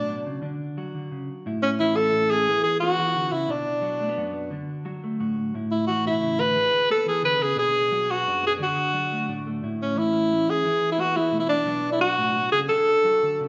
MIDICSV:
0, 0, Header, 1, 4, 480
1, 0, Start_track
1, 0, Key_signature, 3, "major"
1, 0, Tempo, 340329
1, 2049, Time_signature, 12, 3, 24, 8
1, 19014, End_track
2, 0, Start_track
2, 0, Title_t, "Alto saxophone"
2, 0, Program_c, 0, 65
2, 0, Note_on_c, 0, 62, 87
2, 527, Note_off_c, 0, 62, 0
2, 2290, Note_on_c, 0, 61, 91
2, 2398, Note_off_c, 0, 61, 0
2, 2534, Note_on_c, 0, 64, 96
2, 2768, Note_on_c, 0, 69, 104
2, 2789, Note_off_c, 0, 64, 0
2, 3250, Note_on_c, 0, 68, 102
2, 3271, Note_off_c, 0, 69, 0
2, 3708, Note_off_c, 0, 68, 0
2, 3716, Note_on_c, 0, 68, 92
2, 3938, Note_off_c, 0, 68, 0
2, 3947, Note_on_c, 0, 66, 103
2, 4681, Note_on_c, 0, 64, 87
2, 4702, Note_off_c, 0, 66, 0
2, 4951, Note_on_c, 0, 62, 85
2, 4972, Note_off_c, 0, 64, 0
2, 6381, Note_off_c, 0, 62, 0
2, 8061, Note_on_c, 0, 64, 73
2, 8268, Note_off_c, 0, 64, 0
2, 8276, Note_on_c, 0, 66, 84
2, 8506, Note_off_c, 0, 66, 0
2, 8558, Note_on_c, 0, 64, 89
2, 9025, Note_on_c, 0, 71, 116
2, 9046, Note_off_c, 0, 64, 0
2, 9738, Note_off_c, 0, 71, 0
2, 9749, Note_on_c, 0, 69, 92
2, 9963, Note_off_c, 0, 69, 0
2, 9988, Note_on_c, 0, 68, 82
2, 10203, Note_off_c, 0, 68, 0
2, 10224, Note_on_c, 0, 71, 93
2, 10472, Note_on_c, 0, 68, 100
2, 10493, Note_off_c, 0, 71, 0
2, 10695, Note_off_c, 0, 68, 0
2, 10704, Note_on_c, 0, 68, 98
2, 11426, Note_on_c, 0, 66, 81
2, 11448, Note_off_c, 0, 68, 0
2, 11898, Note_off_c, 0, 66, 0
2, 11941, Note_on_c, 0, 68, 89
2, 12038, Note_off_c, 0, 68, 0
2, 12175, Note_on_c, 0, 66, 85
2, 13296, Note_off_c, 0, 66, 0
2, 13854, Note_on_c, 0, 61, 79
2, 14081, Note_on_c, 0, 64, 96
2, 14102, Note_off_c, 0, 61, 0
2, 14802, Note_on_c, 0, 68, 101
2, 14823, Note_off_c, 0, 64, 0
2, 15386, Note_off_c, 0, 68, 0
2, 15402, Note_on_c, 0, 64, 85
2, 15517, Note_on_c, 0, 66, 88
2, 15538, Note_off_c, 0, 64, 0
2, 15745, Note_on_c, 0, 64, 85
2, 15767, Note_off_c, 0, 66, 0
2, 16062, Note_off_c, 0, 64, 0
2, 16071, Note_on_c, 0, 64, 76
2, 16191, Note_off_c, 0, 64, 0
2, 16203, Note_on_c, 0, 62, 96
2, 16764, Note_off_c, 0, 62, 0
2, 16816, Note_on_c, 0, 64, 78
2, 16925, Note_off_c, 0, 64, 0
2, 16939, Note_on_c, 0, 66, 95
2, 17604, Note_off_c, 0, 66, 0
2, 17659, Note_on_c, 0, 68, 100
2, 17765, Note_off_c, 0, 68, 0
2, 17899, Note_on_c, 0, 69, 100
2, 19014, Note_off_c, 0, 69, 0
2, 19014, End_track
3, 0, Start_track
3, 0, Title_t, "Clean electric guitar"
3, 0, Program_c, 1, 27
3, 0, Note_on_c, 1, 54, 61
3, 0, Note_on_c, 1, 62, 49
3, 0, Note_on_c, 1, 66, 52
3, 125, Note_on_c, 1, 47, 67
3, 363, Note_off_c, 1, 47, 0
3, 369, Note_on_c, 1, 49, 65
3, 578, Note_off_c, 1, 54, 0
3, 579, Note_off_c, 1, 62, 0
3, 582, Note_off_c, 1, 49, 0
3, 587, Note_on_c, 1, 50, 68
3, 602, Note_on_c, 1, 62, 55
3, 1081, Note_off_c, 1, 66, 0
3, 1091, Note_on_c, 1, 54, 54
3, 1098, Note_on_c, 1, 66, 65
3, 1318, Note_off_c, 1, 50, 0
3, 1334, Note_on_c, 1, 50, 61
3, 1567, Note_off_c, 1, 50, 0
3, 1573, Note_on_c, 1, 49, 59
3, 1811, Note_off_c, 1, 49, 0
3, 2017, Note_off_c, 1, 62, 0
3, 2022, Note_off_c, 1, 54, 0
3, 2054, Note_off_c, 1, 66, 0
3, 2060, Note_on_c, 1, 45, 74
3, 2070, Note_on_c, 1, 64, 71
3, 2522, Note_on_c, 1, 52, 63
3, 2528, Note_on_c, 1, 61, 62
3, 2762, Note_off_c, 1, 61, 0
3, 2779, Note_on_c, 1, 61, 58
3, 2982, Note_off_c, 1, 45, 0
3, 2995, Note_off_c, 1, 64, 0
3, 2999, Note_on_c, 1, 45, 61
3, 3011, Note_on_c, 1, 64, 62
3, 3251, Note_off_c, 1, 61, 0
3, 3268, Note_on_c, 1, 61, 57
3, 3456, Note_off_c, 1, 45, 0
3, 3462, Note_off_c, 1, 64, 0
3, 3470, Note_off_c, 1, 61, 0
3, 3486, Note_off_c, 1, 52, 0
3, 3501, Note_on_c, 1, 52, 67
3, 3511, Note_on_c, 1, 59, 50
3, 3527, Note_on_c, 1, 64, 55
3, 3978, Note_off_c, 1, 59, 0
3, 3980, Note_off_c, 1, 64, 0
3, 3986, Note_on_c, 1, 61, 51
3, 3992, Note_on_c, 1, 59, 56
3, 4101, Note_off_c, 1, 61, 0
3, 4101, Note_on_c, 1, 64, 46
3, 4194, Note_off_c, 1, 52, 0
3, 4211, Note_on_c, 1, 52, 58
3, 4444, Note_on_c, 1, 50, 62
3, 4451, Note_off_c, 1, 52, 0
3, 4676, Note_off_c, 1, 50, 0
3, 4682, Note_on_c, 1, 49, 62
3, 4907, Note_off_c, 1, 49, 0
3, 4912, Note_off_c, 1, 59, 0
3, 4913, Note_on_c, 1, 47, 71
3, 4917, Note_off_c, 1, 64, 0
3, 4922, Note_on_c, 1, 62, 61
3, 5384, Note_on_c, 1, 54, 67
3, 5397, Note_on_c, 1, 66, 61
3, 5651, Note_on_c, 1, 57, 57
3, 5763, Note_off_c, 1, 57, 0
3, 5763, Note_on_c, 1, 59, 48
3, 5880, Note_off_c, 1, 66, 0
3, 5880, Note_on_c, 1, 42, 55
3, 5882, Note_off_c, 1, 47, 0
3, 5897, Note_on_c, 1, 66, 60
3, 6092, Note_off_c, 1, 59, 0
3, 6109, Note_on_c, 1, 59, 61
3, 6328, Note_off_c, 1, 54, 0
3, 6331, Note_off_c, 1, 59, 0
3, 6338, Note_off_c, 1, 62, 0
3, 6355, Note_on_c, 1, 50, 67
3, 6365, Note_off_c, 1, 42, 0
3, 6371, Note_on_c, 1, 62, 53
3, 6834, Note_off_c, 1, 66, 0
3, 6843, Note_on_c, 1, 54, 59
3, 6851, Note_on_c, 1, 66, 58
3, 7105, Note_on_c, 1, 57, 55
3, 7323, Note_off_c, 1, 66, 0
3, 7331, Note_on_c, 1, 45, 60
3, 7339, Note_on_c, 1, 66, 62
3, 7556, Note_off_c, 1, 57, 0
3, 7774, Note_off_c, 1, 50, 0
3, 7778, Note_off_c, 1, 54, 0
3, 7782, Note_off_c, 1, 45, 0
3, 7782, Note_off_c, 1, 62, 0
3, 7815, Note_off_c, 1, 66, 0
3, 7818, Note_on_c, 1, 45, 80
3, 7830, Note_on_c, 1, 64, 55
3, 8294, Note_on_c, 1, 52, 60
3, 8295, Note_off_c, 1, 64, 0
3, 8312, Note_on_c, 1, 64, 57
3, 8532, Note_on_c, 1, 47, 60
3, 8751, Note_off_c, 1, 47, 0
3, 8756, Note_on_c, 1, 49, 64
3, 8986, Note_off_c, 1, 49, 0
3, 8991, Note_on_c, 1, 50, 56
3, 9225, Note_off_c, 1, 45, 0
3, 9228, Note_off_c, 1, 52, 0
3, 9232, Note_off_c, 1, 64, 0
3, 9241, Note_off_c, 1, 50, 0
3, 9253, Note_on_c, 1, 68, 54
3, 9724, Note_off_c, 1, 68, 0
3, 9736, Note_on_c, 1, 59, 64
3, 9748, Note_on_c, 1, 68, 54
3, 9958, Note_on_c, 1, 52, 64
3, 10198, Note_on_c, 1, 50, 59
3, 10204, Note_off_c, 1, 52, 0
3, 10418, Note_off_c, 1, 50, 0
3, 10424, Note_on_c, 1, 49, 60
3, 10658, Note_off_c, 1, 49, 0
3, 10664, Note_on_c, 1, 47, 80
3, 10665, Note_off_c, 1, 59, 0
3, 10667, Note_off_c, 1, 68, 0
3, 10674, Note_on_c, 1, 62, 62
3, 11165, Note_on_c, 1, 54, 69
3, 11175, Note_on_c, 1, 66, 61
3, 11434, Note_on_c, 1, 59, 60
3, 11637, Note_off_c, 1, 47, 0
3, 11642, Note_off_c, 1, 62, 0
3, 11664, Note_on_c, 1, 42, 63
3, 11676, Note_on_c, 1, 62, 59
3, 11869, Note_off_c, 1, 59, 0
3, 11886, Note_on_c, 1, 59, 59
3, 12098, Note_off_c, 1, 54, 0
3, 12099, Note_off_c, 1, 59, 0
3, 12114, Note_off_c, 1, 62, 0
3, 12116, Note_on_c, 1, 50, 73
3, 12130, Note_on_c, 1, 62, 53
3, 12137, Note_off_c, 1, 42, 0
3, 12588, Note_off_c, 1, 62, 0
3, 12602, Note_on_c, 1, 54, 59
3, 12612, Note_on_c, 1, 62, 46
3, 12860, Note_on_c, 1, 57, 51
3, 13088, Note_off_c, 1, 62, 0
3, 13088, Note_on_c, 1, 45, 66
3, 13107, Note_on_c, 1, 62, 61
3, 13335, Note_off_c, 1, 57, 0
3, 13356, Note_on_c, 1, 57, 62
3, 13534, Note_off_c, 1, 50, 0
3, 13538, Note_off_c, 1, 54, 0
3, 13540, Note_off_c, 1, 45, 0
3, 13550, Note_off_c, 1, 62, 0
3, 13584, Note_on_c, 1, 45, 80
3, 13592, Note_on_c, 1, 64, 64
3, 14042, Note_on_c, 1, 52, 65
3, 14043, Note_off_c, 1, 57, 0
3, 14049, Note_on_c, 1, 61, 57
3, 14271, Note_off_c, 1, 61, 0
3, 14288, Note_on_c, 1, 61, 59
3, 14529, Note_off_c, 1, 61, 0
3, 14538, Note_off_c, 1, 45, 0
3, 14553, Note_on_c, 1, 61, 56
3, 14755, Note_off_c, 1, 61, 0
3, 14772, Note_on_c, 1, 61, 52
3, 14982, Note_off_c, 1, 61, 0
3, 14990, Note_off_c, 1, 64, 0
3, 14998, Note_off_c, 1, 52, 0
3, 15013, Note_off_c, 1, 66, 0
3, 15015, Note_on_c, 1, 52, 64
3, 15029, Note_on_c, 1, 64, 55
3, 15475, Note_off_c, 1, 64, 0
3, 15486, Note_on_c, 1, 59, 57
3, 15498, Note_on_c, 1, 64, 47
3, 15726, Note_off_c, 1, 59, 0
3, 15742, Note_on_c, 1, 59, 56
3, 15961, Note_on_c, 1, 47, 58
3, 15968, Note_off_c, 1, 59, 0
3, 15973, Note_on_c, 1, 57, 50
3, 16075, Note_off_c, 1, 57, 0
3, 16075, Note_on_c, 1, 59, 50
3, 16198, Note_off_c, 1, 64, 0
3, 16215, Note_on_c, 1, 64, 59
3, 16414, Note_off_c, 1, 47, 0
3, 16424, Note_off_c, 1, 64, 0
3, 16431, Note_on_c, 1, 47, 67
3, 16432, Note_off_c, 1, 59, 0
3, 16443, Note_off_c, 1, 52, 0
3, 16449, Note_on_c, 1, 54, 63
3, 16455, Note_on_c, 1, 59, 57
3, 16461, Note_on_c, 1, 62, 62
3, 16474, Note_on_c, 1, 66, 68
3, 16907, Note_off_c, 1, 54, 0
3, 16924, Note_on_c, 1, 54, 64
3, 16925, Note_off_c, 1, 62, 0
3, 16942, Note_on_c, 1, 62, 63
3, 17170, Note_on_c, 1, 45, 68
3, 17397, Note_off_c, 1, 47, 0
3, 17410, Note_off_c, 1, 45, 0
3, 17414, Note_on_c, 1, 47, 63
3, 17652, Note_off_c, 1, 47, 0
3, 17673, Note_on_c, 1, 49, 67
3, 17858, Note_off_c, 1, 54, 0
3, 17861, Note_off_c, 1, 59, 0
3, 17868, Note_off_c, 1, 62, 0
3, 17902, Note_off_c, 1, 49, 0
3, 17930, Note_on_c, 1, 62, 55
3, 18382, Note_off_c, 1, 66, 0
3, 18399, Note_on_c, 1, 54, 54
3, 18412, Note_on_c, 1, 66, 62
3, 18662, Note_on_c, 1, 50, 60
3, 18876, Note_off_c, 1, 50, 0
3, 18912, Note_on_c, 1, 49, 62
3, 19014, Note_off_c, 1, 49, 0
3, 19014, Note_off_c, 1, 54, 0
3, 19014, Note_off_c, 1, 62, 0
3, 19014, Note_off_c, 1, 66, 0
3, 19014, End_track
4, 0, Start_track
4, 0, Title_t, "Muted clean electric guitar strokes"
4, 7573, Note_on_c, 9, 29, 56
4, 7714, Note_off_c, 9, 29, 0
4, 9244, Note_on_c, 9, 29, 63
4, 9385, Note_off_c, 9, 29, 0
4, 17919, Note_on_c, 9, 29, 59
4, 18060, Note_off_c, 9, 29, 0
4, 19014, End_track
0, 0, End_of_file